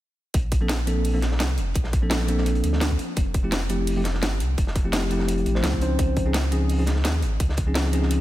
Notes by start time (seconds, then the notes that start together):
0.34 A#1, kick, closed hi-hat
0.52 kick, closed hi-hat
0.61 F3 A#3 C4 D4 A4
0.69 snare, closed hi-hat
0.87 F3 A#3 C4 D4 A4, closed hi-hat
1.04 closed hi-hat, open hi-hat
1.14 F3 A#3 C4 D4 A4
1.22 snare, closed hi-hat
1.32 snare
1.40 C2, snare, closed hi-hat
1.58 F1, closed hi-hat
1.74 A#1, kick, closed hi-hat
1.84 snare
1.93 kick, closed hi-hat
2.02 F3 A#3 C4 D4 A4
2.10 snare, closed hi-hat
2.20 snare
2.27 F3 A#3 C4 D4 A4, closed hi-hat
2.38 snare
2.46 closed hi-hat
2.55 closed hi-hat
2.64 D2, closed hi-hat
2.73 snare
2.81 snare, closed hi-hat
2.91 kick
2.99 closed hi-hat
3.16 F1, kick, closed hi-hat
3.34 kick, closed hi-hat
3.43 F3 A3 C4 E4 G4
3.52 snare, closed hi-hat
3.69 F3 A3 C4 E4 G4, closed hi-hat
3.87 closed hi-hat, open hi-hat
3.96 F3 A3 C4 E4 G4
4.04 snare, closed hi-hat
4.14 snare
4.22 G1, snare, closed hi-hat
4.40 C2, closed hi-hat
4.58 F1, kick, closed hi-hat
4.67 snare
4.75 kick, closed hi-hat
4.84 F3 A3 C4 E4 G4
4.92 snare, closed hi-hat
5.02 snare
5.10 F3 A3 C4 E4 G4, closed hi-hat
5.19 snare
5.28 closed hi-hat
5.38 closed hi-hat
5.46 A1, closed hi-hat
5.55 F3 A3 C4 E4 C5, snare
5.63 C#2, snare, closed hi-hat
5.73 kick
5.80 F3 C4 C#4 D#4 C5, closed hi-hat
5.99 C#2, kick, closed hi-hat
6.17 kick, closed hi-hat
6.25 F3 C4 C#4 D#4 G#4
6.34 snare, closed hi-hat
6.51 F3 C4 C#4 D#4 G#4, closed hi-hat
6.69 closed hi-hat, open hi-hat
6.78 F3 C4 C#4 D#4 G#4
6.86 snare, closed hi-hat
6.96 snare
7.05 D#2, snare, closed hi-hat
7.22 G#1, closed hi-hat
7.40 C#2, kick, closed hi-hat
7.49 snare
7.57 kick, closed hi-hat
7.67 F3 C4 C#4 D#4 G#4
7.75 snare, closed hi-hat
7.85 snare
7.92 F3 C4 C#4 D#4 G#4, closed hi-hat
8.02 snare
8.11 closed hi-hat